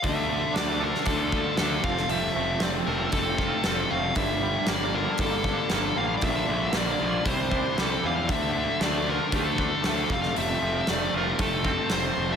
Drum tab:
HH |o---o---o---o---|o---o---o---o---|o---o---o---o---|o---o---o---o---|
SD |----o--o----o--o|----o-------o---|----o-------o---|----o-------o---|
BD |o-------o-o---o-|--------o-o-----|o-------o-o-----|o-------o-o-----|

HH |o---o---o---o---|o---o---o---o---|
SD |----o-------o--o|----o-------o---|
BD |o-------o-o---o-|--------o-o-----|